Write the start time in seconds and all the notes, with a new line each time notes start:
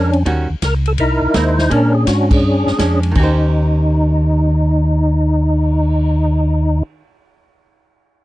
Already playing: F2 G#3 C#4 D4 A#4
0.13 ride
0.25 D#2 D#3 G3 C#4 F#4, kick, ride
0.49 D#2
0.62 C#2 A#4, kick, snare, hi-hat pedal, ride
0.86 A4, ride
0.98 C2 D#4 E4 A#4, kick, ride
1.22 C2
1.34 D#2 G#3 A#3 D#4 E4 C5, kick, snare, hi-hat pedal, ride
1.58 snare
1.70 A#2 G#3 C#4 D4 A#4, kick, ride
1.74 D4
1.95 G#4
2.07 G#2 F#4, kick, snare, hi-hat pedal, ride
2.31 C#4 D4 G#4, kick, crash
2.43 G2
2.67 G2, snare
2.79 F2 G#3 C#4 D4, kick, snare, hi-hat pedal, ride
3.03 ride
3.11 D#3, crash
3.16 D#2 C#4 D#4, kick
3.20 G4 C5
3.40 cymbal swell